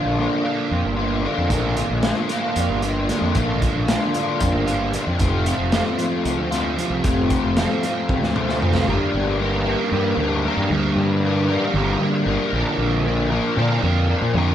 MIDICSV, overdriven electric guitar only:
0, 0, Header, 1, 2, 480
1, 0, Start_track
1, 0, Key_signature, -2, "minor"
1, 0, Tempo, 527241
1, 1370, Time_signature, 7, 3, 24, 8
1, 7128, Tempo, 521739
1, 13309, End_track
2, 0, Start_track
2, 0, Title_t, "Overdriven electric guitar"
2, 0, Program_c, 0, 29
2, 0, Note_on_c, 0, 46, 76
2, 0, Note_on_c, 0, 50, 77
2, 0, Note_on_c, 0, 58, 48
2, 0, Note_on_c, 0, 62, 56
2, 0, Note_on_c, 0, 65, 63
2, 158, Note_off_c, 0, 50, 0
2, 169, Note_on_c, 0, 50, 62
2, 170, Note_off_c, 0, 58, 0
2, 174, Note_on_c, 0, 58, 62
2, 180, Note_off_c, 0, 62, 0
2, 184, Note_on_c, 0, 62, 64
2, 187, Note_off_c, 0, 65, 0
2, 191, Note_on_c, 0, 65, 66
2, 393, Note_off_c, 0, 65, 0
2, 397, Note_on_c, 0, 65, 66
2, 405, Note_off_c, 0, 62, 0
2, 409, Note_on_c, 0, 62, 59
2, 418, Note_off_c, 0, 58, 0
2, 421, Note_on_c, 0, 58, 52
2, 649, Note_off_c, 0, 50, 0
2, 875, Note_off_c, 0, 65, 0
2, 878, Note_on_c, 0, 65, 58
2, 894, Note_off_c, 0, 62, 0
2, 897, Note_on_c, 0, 62, 58
2, 906, Note_off_c, 0, 58, 0
2, 909, Note_on_c, 0, 58, 56
2, 1119, Note_off_c, 0, 46, 0
2, 1123, Note_on_c, 0, 46, 68
2, 1128, Note_on_c, 0, 50, 70
2, 1130, Note_off_c, 0, 58, 0
2, 1134, Note_on_c, 0, 58, 67
2, 1138, Note_off_c, 0, 62, 0
2, 1142, Note_off_c, 0, 65, 0
2, 1142, Note_on_c, 0, 62, 69
2, 1145, Note_on_c, 0, 65, 79
2, 1359, Note_off_c, 0, 46, 0
2, 1360, Note_off_c, 0, 50, 0
2, 1362, Note_on_c, 0, 46, 76
2, 1371, Note_on_c, 0, 50, 77
2, 1379, Note_off_c, 0, 58, 0
2, 1382, Note_off_c, 0, 62, 0
2, 1382, Note_on_c, 0, 58, 75
2, 1385, Note_on_c, 0, 62, 86
2, 1386, Note_off_c, 0, 65, 0
2, 1389, Note_on_c, 0, 65, 78
2, 1604, Note_off_c, 0, 65, 0
2, 1608, Note_on_c, 0, 65, 61
2, 1617, Note_off_c, 0, 62, 0
2, 1621, Note_on_c, 0, 62, 53
2, 1634, Note_off_c, 0, 58, 0
2, 1638, Note_on_c, 0, 58, 50
2, 1834, Note_off_c, 0, 50, 0
2, 1845, Note_on_c, 0, 50, 62
2, 1852, Note_off_c, 0, 58, 0
2, 1856, Note_on_c, 0, 58, 56
2, 1863, Note_off_c, 0, 62, 0
2, 1867, Note_on_c, 0, 62, 56
2, 1869, Note_off_c, 0, 65, 0
2, 1872, Note_on_c, 0, 65, 67
2, 2087, Note_off_c, 0, 65, 0
2, 2090, Note_on_c, 0, 65, 72
2, 2096, Note_off_c, 0, 62, 0
2, 2105, Note_off_c, 0, 58, 0
2, 2107, Note_on_c, 0, 62, 65
2, 2116, Note_on_c, 0, 58, 57
2, 2329, Note_off_c, 0, 50, 0
2, 2570, Note_off_c, 0, 65, 0
2, 2573, Note_off_c, 0, 62, 0
2, 2573, Note_on_c, 0, 65, 66
2, 2584, Note_off_c, 0, 58, 0
2, 2584, Note_on_c, 0, 62, 64
2, 2595, Note_on_c, 0, 58, 56
2, 2800, Note_off_c, 0, 46, 0
2, 2803, Note_on_c, 0, 46, 70
2, 2812, Note_off_c, 0, 58, 0
2, 2816, Note_on_c, 0, 50, 68
2, 2818, Note_off_c, 0, 62, 0
2, 2823, Note_on_c, 0, 58, 79
2, 2827, Note_off_c, 0, 65, 0
2, 2829, Note_on_c, 0, 62, 72
2, 2831, Note_on_c, 0, 65, 83
2, 3034, Note_off_c, 0, 46, 0
2, 3041, Note_off_c, 0, 50, 0
2, 3045, Note_on_c, 0, 46, 78
2, 3049, Note_off_c, 0, 58, 0
2, 3052, Note_on_c, 0, 50, 73
2, 3056, Note_off_c, 0, 62, 0
2, 3060, Note_on_c, 0, 58, 83
2, 3067, Note_on_c, 0, 62, 86
2, 3071, Note_off_c, 0, 65, 0
2, 3075, Note_on_c, 0, 65, 83
2, 3287, Note_off_c, 0, 65, 0
2, 3290, Note_on_c, 0, 65, 66
2, 3295, Note_off_c, 0, 62, 0
2, 3306, Note_on_c, 0, 62, 58
2, 3310, Note_off_c, 0, 58, 0
2, 3321, Note_on_c, 0, 58, 54
2, 3514, Note_off_c, 0, 50, 0
2, 3523, Note_off_c, 0, 58, 0
2, 3525, Note_on_c, 0, 50, 66
2, 3529, Note_off_c, 0, 62, 0
2, 3530, Note_off_c, 0, 46, 0
2, 3534, Note_on_c, 0, 58, 62
2, 3540, Note_on_c, 0, 62, 58
2, 3547, Note_off_c, 0, 65, 0
2, 3550, Note_on_c, 0, 65, 75
2, 3771, Note_off_c, 0, 65, 0
2, 3775, Note_on_c, 0, 65, 68
2, 3776, Note_off_c, 0, 62, 0
2, 3787, Note_off_c, 0, 58, 0
2, 3787, Note_on_c, 0, 62, 62
2, 3798, Note_on_c, 0, 58, 57
2, 4009, Note_off_c, 0, 50, 0
2, 4245, Note_off_c, 0, 65, 0
2, 4249, Note_on_c, 0, 65, 61
2, 4257, Note_off_c, 0, 62, 0
2, 4267, Note_on_c, 0, 62, 60
2, 4268, Note_off_c, 0, 58, 0
2, 4279, Note_on_c, 0, 58, 58
2, 4484, Note_on_c, 0, 46, 77
2, 4489, Note_off_c, 0, 58, 0
2, 4499, Note_on_c, 0, 50, 72
2, 4500, Note_off_c, 0, 62, 0
2, 4500, Note_on_c, 0, 58, 70
2, 4510, Note_off_c, 0, 65, 0
2, 4511, Note_on_c, 0, 62, 68
2, 4514, Note_on_c, 0, 65, 82
2, 4715, Note_off_c, 0, 46, 0
2, 4722, Note_off_c, 0, 50, 0
2, 4723, Note_off_c, 0, 58, 0
2, 4728, Note_off_c, 0, 62, 0
2, 4730, Note_on_c, 0, 41, 77
2, 4736, Note_on_c, 0, 48, 72
2, 4740, Note_on_c, 0, 53, 80
2, 4746, Note_on_c, 0, 57, 84
2, 4749, Note_on_c, 0, 60, 74
2, 4751, Note_off_c, 0, 65, 0
2, 4755, Note_on_c, 0, 65, 92
2, 4969, Note_off_c, 0, 65, 0
2, 4972, Note_on_c, 0, 65, 61
2, 4979, Note_off_c, 0, 60, 0
2, 4983, Note_on_c, 0, 60, 56
2, 4986, Note_off_c, 0, 57, 0
2, 4990, Note_on_c, 0, 57, 55
2, 4995, Note_off_c, 0, 53, 0
2, 4998, Note_on_c, 0, 53, 51
2, 5213, Note_off_c, 0, 53, 0
2, 5214, Note_off_c, 0, 48, 0
2, 5217, Note_on_c, 0, 53, 63
2, 5219, Note_off_c, 0, 57, 0
2, 5223, Note_on_c, 0, 57, 65
2, 5224, Note_off_c, 0, 60, 0
2, 5228, Note_on_c, 0, 60, 65
2, 5233, Note_off_c, 0, 65, 0
2, 5237, Note_on_c, 0, 65, 72
2, 5436, Note_off_c, 0, 65, 0
2, 5446, Note_on_c, 0, 65, 73
2, 5447, Note_off_c, 0, 60, 0
2, 5455, Note_off_c, 0, 57, 0
2, 5458, Note_on_c, 0, 60, 64
2, 5462, Note_off_c, 0, 53, 0
2, 5466, Note_on_c, 0, 57, 55
2, 5473, Note_on_c, 0, 53, 52
2, 5917, Note_off_c, 0, 65, 0
2, 5927, Note_off_c, 0, 60, 0
2, 5928, Note_on_c, 0, 65, 62
2, 5937, Note_off_c, 0, 57, 0
2, 5937, Note_on_c, 0, 60, 61
2, 5943, Note_off_c, 0, 53, 0
2, 5948, Note_on_c, 0, 57, 62
2, 5954, Note_on_c, 0, 53, 50
2, 6163, Note_off_c, 0, 41, 0
2, 6166, Note_off_c, 0, 53, 0
2, 6167, Note_on_c, 0, 41, 76
2, 6173, Note_off_c, 0, 57, 0
2, 6175, Note_on_c, 0, 48, 66
2, 6177, Note_off_c, 0, 60, 0
2, 6177, Note_on_c, 0, 53, 81
2, 6179, Note_off_c, 0, 65, 0
2, 6184, Note_on_c, 0, 57, 74
2, 6188, Note_on_c, 0, 60, 77
2, 6190, Note_on_c, 0, 65, 77
2, 6399, Note_off_c, 0, 41, 0
2, 6403, Note_off_c, 0, 48, 0
2, 6408, Note_off_c, 0, 53, 0
2, 6410, Note_on_c, 0, 41, 78
2, 6412, Note_off_c, 0, 57, 0
2, 6414, Note_off_c, 0, 60, 0
2, 6414, Note_on_c, 0, 48, 77
2, 6419, Note_on_c, 0, 53, 82
2, 6422, Note_off_c, 0, 65, 0
2, 6423, Note_on_c, 0, 57, 76
2, 6425, Note_on_c, 0, 60, 78
2, 6433, Note_on_c, 0, 65, 82
2, 6639, Note_off_c, 0, 65, 0
2, 6650, Note_on_c, 0, 65, 61
2, 6652, Note_off_c, 0, 60, 0
2, 6657, Note_off_c, 0, 57, 0
2, 6663, Note_on_c, 0, 60, 60
2, 6665, Note_off_c, 0, 53, 0
2, 6668, Note_on_c, 0, 57, 57
2, 6676, Note_on_c, 0, 53, 53
2, 6884, Note_off_c, 0, 53, 0
2, 6889, Note_off_c, 0, 41, 0
2, 6890, Note_off_c, 0, 57, 0
2, 6891, Note_off_c, 0, 48, 0
2, 6895, Note_on_c, 0, 53, 59
2, 6900, Note_off_c, 0, 60, 0
2, 6901, Note_on_c, 0, 57, 71
2, 6909, Note_off_c, 0, 65, 0
2, 6911, Note_on_c, 0, 60, 65
2, 6920, Note_on_c, 0, 65, 63
2, 7120, Note_off_c, 0, 65, 0
2, 7130, Note_off_c, 0, 60, 0
2, 7131, Note_on_c, 0, 65, 63
2, 7140, Note_off_c, 0, 57, 0
2, 7141, Note_on_c, 0, 60, 63
2, 7146, Note_off_c, 0, 53, 0
2, 7151, Note_on_c, 0, 57, 55
2, 7158, Note_on_c, 0, 53, 54
2, 7596, Note_off_c, 0, 65, 0
2, 7605, Note_off_c, 0, 60, 0
2, 7607, Note_on_c, 0, 65, 63
2, 7611, Note_off_c, 0, 57, 0
2, 7616, Note_on_c, 0, 60, 56
2, 7622, Note_off_c, 0, 53, 0
2, 7622, Note_on_c, 0, 57, 61
2, 7633, Note_on_c, 0, 53, 55
2, 7839, Note_on_c, 0, 41, 76
2, 7841, Note_off_c, 0, 53, 0
2, 7844, Note_on_c, 0, 48, 73
2, 7847, Note_off_c, 0, 57, 0
2, 7851, Note_off_c, 0, 60, 0
2, 7852, Note_on_c, 0, 53, 77
2, 7857, Note_off_c, 0, 65, 0
2, 7858, Note_on_c, 0, 57, 70
2, 7862, Note_on_c, 0, 60, 73
2, 7868, Note_on_c, 0, 65, 77
2, 8071, Note_off_c, 0, 41, 0
2, 8074, Note_off_c, 0, 48, 0
2, 8078, Note_off_c, 0, 53, 0
2, 8081, Note_off_c, 0, 57, 0
2, 8083, Note_off_c, 0, 60, 0
2, 8083, Note_on_c, 0, 43, 80
2, 8086, Note_off_c, 0, 65, 0
2, 8090, Note_on_c, 0, 50, 75
2, 8096, Note_on_c, 0, 55, 88
2, 8102, Note_on_c, 0, 58, 90
2, 8107, Note_on_c, 0, 62, 96
2, 8110, Note_on_c, 0, 70, 96
2, 8563, Note_off_c, 0, 55, 0
2, 8567, Note_on_c, 0, 55, 61
2, 8579, Note_off_c, 0, 58, 0
2, 8582, Note_off_c, 0, 62, 0
2, 8582, Note_on_c, 0, 58, 69
2, 8586, Note_on_c, 0, 62, 78
2, 8590, Note_off_c, 0, 70, 0
2, 8594, Note_on_c, 0, 70, 83
2, 8803, Note_off_c, 0, 70, 0
2, 8807, Note_on_c, 0, 70, 73
2, 8812, Note_off_c, 0, 50, 0
2, 8813, Note_off_c, 0, 62, 0
2, 8817, Note_on_c, 0, 62, 67
2, 8819, Note_off_c, 0, 58, 0
2, 8822, Note_off_c, 0, 55, 0
2, 8823, Note_on_c, 0, 58, 60
2, 8833, Note_on_c, 0, 55, 61
2, 9041, Note_off_c, 0, 43, 0
2, 9044, Note_on_c, 0, 43, 88
2, 9050, Note_off_c, 0, 55, 0
2, 9058, Note_on_c, 0, 50, 91
2, 9061, Note_off_c, 0, 58, 0
2, 9061, Note_on_c, 0, 55, 93
2, 9064, Note_on_c, 0, 58, 86
2, 9067, Note_off_c, 0, 62, 0
2, 9071, Note_on_c, 0, 62, 100
2, 9075, Note_off_c, 0, 70, 0
2, 9078, Note_on_c, 0, 70, 113
2, 9297, Note_off_c, 0, 70, 0
2, 9301, Note_on_c, 0, 70, 72
2, 9305, Note_off_c, 0, 62, 0
2, 9309, Note_on_c, 0, 62, 70
2, 9315, Note_off_c, 0, 55, 0
2, 9315, Note_off_c, 0, 58, 0
2, 9319, Note_on_c, 0, 58, 69
2, 9326, Note_on_c, 0, 55, 61
2, 9524, Note_off_c, 0, 55, 0
2, 9528, Note_off_c, 0, 43, 0
2, 9535, Note_off_c, 0, 50, 0
2, 9535, Note_on_c, 0, 55, 60
2, 9546, Note_off_c, 0, 58, 0
2, 9550, Note_on_c, 0, 58, 69
2, 9557, Note_off_c, 0, 62, 0
2, 9560, Note_on_c, 0, 62, 66
2, 9563, Note_off_c, 0, 70, 0
2, 9567, Note_on_c, 0, 70, 67
2, 9774, Note_on_c, 0, 43, 85
2, 9777, Note_off_c, 0, 55, 0
2, 9786, Note_on_c, 0, 50, 96
2, 9788, Note_on_c, 0, 55, 93
2, 9791, Note_off_c, 0, 58, 0
2, 9794, Note_off_c, 0, 62, 0
2, 9795, Note_on_c, 0, 58, 87
2, 9798, Note_on_c, 0, 62, 95
2, 9801, Note_off_c, 0, 70, 0
2, 9805, Note_on_c, 0, 70, 92
2, 10251, Note_off_c, 0, 55, 0
2, 10262, Note_on_c, 0, 55, 75
2, 10266, Note_off_c, 0, 58, 0
2, 10270, Note_on_c, 0, 58, 66
2, 10279, Note_off_c, 0, 62, 0
2, 10282, Note_on_c, 0, 62, 75
2, 10284, Note_off_c, 0, 70, 0
2, 10288, Note_on_c, 0, 70, 67
2, 10489, Note_off_c, 0, 70, 0
2, 10492, Note_off_c, 0, 43, 0
2, 10493, Note_on_c, 0, 70, 83
2, 10498, Note_off_c, 0, 50, 0
2, 10500, Note_off_c, 0, 62, 0
2, 10504, Note_on_c, 0, 62, 74
2, 10507, Note_off_c, 0, 55, 0
2, 10507, Note_off_c, 0, 58, 0
2, 10510, Note_on_c, 0, 58, 69
2, 10518, Note_on_c, 0, 55, 64
2, 10725, Note_on_c, 0, 43, 95
2, 10730, Note_on_c, 0, 50, 99
2, 10732, Note_off_c, 0, 55, 0
2, 10741, Note_off_c, 0, 58, 0
2, 10743, Note_on_c, 0, 55, 97
2, 10744, Note_off_c, 0, 62, 0
2, 10744, Note_on_c, 0, 58, 98
2, 10747, Note_on_c, 0, 62, 91
2, 10749, Note_off_c, 0, 70, 0
2, 10752, Note_on_c, 0, 70, 98
2, 10962, Note_off_c, 0, 70, 0
2, 10966, Note_on_c, 0, 70, 82
2, 10967, Note_off_c, 0, 62, 0
2, 10970, Note_on_c, 0, 62, 66
2, 10977, Note_off_c, 0, 55, 0
2, 10980, Note_off_c, 0, 58, 0
2, 10984, Note_on_c, 0, 58, 67
2, 10988, Note_on_c, 0, 55, 69
2, 11190, Note_off_c, 0, 55, 0
2, 11201, Note_on_c, 0, 55, 59
2, 11207, Note_off_c, 0, 43, 0
2, 11208, Note_off_c, 0, 58, 0
2, 11210, Note_off_c, 0, 50, 0
2, 11211, Note_on_c, 0, 58, 66
2, 11215, Note_off_c, 0, 62, 0
2, 11219, Note_on_c, 0, 62, 70
2, 11223, Note_off_c, 0, 70, 0
2, 11227, Note_on_c, 0, 70, 75
2, 11431, Note_off_c, 0, 55, 0
2, 11452, Note_on_c, 0, 46, 88
2, 11456, Note_on_c, 0, 50, 91
2, 11461, Note_on_c, 0, 53, 87
2, 11463, Note_off_c, 0, 58, 0
2, 11467, Note_on_c, 0, 58, 84
2, 11471, Note_off_c, 0, 62, 0
2, 11472, Note_off_c, 0, 70, 0
2, 11474, Note_on_c, 0, 62, 88
2, 11476, Note_on_c, 0, 70, 94
2, 11924, Note_off_c, 0, 53, 0
2, 11928, Note_on_c, 0, 53, 72
2, 11938, Note_off_c, 0, 58, 0
2, 11942, Note_on_c, 0, 58, 76
2, 11947, Note_off_c, 0, 62, 0
2, 11950, Note_on_c, 0, 62, 74
2, 11953, Note_off_c, 0, 70, 0
2, 11957, Note_on_c, 0, 70, 77
2, 12156, Note_off_c, 0, 70, 0
2, 12160, Note_on_c, 0, 70, 71
2, 12164, Note_off_c, 0, 62, 0
2, 12168, Note_on_c, 0, 62, 74
2, 12171, Note_off_c, 0, 50, 0
2, 12174, Note_off_c, 0, 58, 0
2, 12177, Note_on_c, 0, 58, 70
2, 12180, Note_off_c, 0, 53, 0
2, 12184, Note_on_c, 0, 53, 60
2, 12397, Note_off_c, 0, 46, 0
2, 12401, Note_on_c, 0, 46, 95
2, 12410, Note_on_c, 0, 50, 93
2, 12416, Note_off_c, 0, 53, 0
2, 12419, Note_off_c, 0, 58, 0
2, 12420, Note_on_c, 0, 53, 92
2, 12423, Note_off_c, 0, 62, 0
2, 12423, Note_on_c, 0, 58, 93
2, 12426, Note_off_c, 0, 70, 0
2, 12427, Note_on_c, 0, 62, 112
2, 12429, Note_on_c, 0, 70, 110
2, 12636, Note_off_c, 0, 70, 0
2, 12640, Note_on_c, 0, 70, 77
2, 12646, Note_off_c, 0, 62, 0
2, 12650, Note_on_c, 0, 62, 73
2, 12656, Note_off_c, 0, 58, 0
2, 12660, Note_on_c, 0, 58, 67
2, 12661, Note_off_c, 0, 53, 0
2, 12664, Note_on_c, 0, 53, 65
2, 12872, Note_off_c, 0, 53, 0
2, 12876, Note_on_c, 0, 53, 63
2, 12882, Note_off_c, 0, 58, 0
2, 12886, Note_on_c, 0, 58, 67
2, 12887, Note_off_c, 0, 62, 0
2, 12888, Note_off_c, 0, 50, 0
2, 12890, Note_on_c, 0, 62, 77
2, 12900, Note_off_c, 0, 70, 0
2, 12903, Note_on_c, 0, 70, 65
2, 13120, Note_off_c, 0, 46, 0
2, 13124, Note_on_c, 0, 46, 82
2, 13129, Note_on_c, 0, 50, 90
2, 13135, Note_off_c, 0, 53, 0
2, 13139, Note_on_c, 0, 53, 86
2, 13141, Note_off_c, 0, 58, 0
2, 13144, Note_off_c, 0, 62, 0
2, 13144, Note_on_c, 0, 58, 95
2, 13148, Note_on_c, 0, 62, 95
2, 13150, Note_off_c, 0, 70, 0
2, 13154, Note_on_c, 0, 70, 103
2, 13309, Note_off_c, 0, 46, 0
2, 13309, Note_off_c, 0, 50, 0
2, 13309, Note_off_c, 0, 53, 0
2, 13309, Note_off_c, 0, 58, 0
2, 13309, Note_off_c, 0, 62, 0
2, 13309, Note_off_c, 0, 70, 0
2, 13309, End_track
0, 0, End_of_file